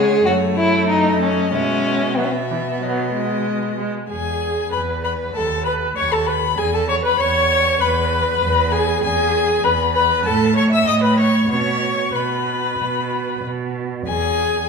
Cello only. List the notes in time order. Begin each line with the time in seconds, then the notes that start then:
Already playing: C#3
0.27 F#2
1.53 B2
4.11 E2
4.74 E2
5.35 D#2
5.97 D#2
6.59 E2
7.21 E2
7.82 E2
8.42 E2
9.04 E2
9.65 E2
10.27 A2
10.88 A2
11.50 B2
12.14 B2
12.78 B2
13.44 B2
14.07 E2